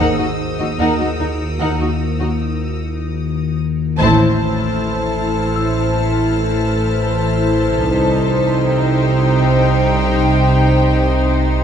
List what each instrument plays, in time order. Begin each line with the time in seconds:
Already playing: violin section D#6 E6
0.00 synth drone D#2, viola section D#4, ambient pad D#4 F#4 A#4, violin section A#4 F#5
0.18 cello section D#2, viola section D#4, violin section F#4 D#5
0.59 cello section D#2, viola section D#4, violin section F#4 D#5
0.79 double bass section D#2, cello section D#2, viola section D#4, violin section A#4 F#5
1.00 cello section D#2, viola section D#4, violin section F#4 D#5
1.19 double bass section D#2, cello section D#2, viola section D#4, violin section D#4 A#4
1.60 double bass section D#2, cello section D#2, viola section D#4, violin section A#4 F#5
1.80 cello section D#2, viola section D#4, violin section F#4 D#5
2.20 cello section D#2, viola section D#4, violin section F#4 D#5
3.98 double bass section A1, synth drone A1, cello section A2, viola section E4, ambient pad E4 A4 C5, violin section C5 A5 E6 F6
5.56 celesta E6, violin section B6
7.86 synth drone C2, double bass section C2, cello section C3, ambient pad D#4 G4 C5, viola section D#4, violin section C5
8.63 violin section G5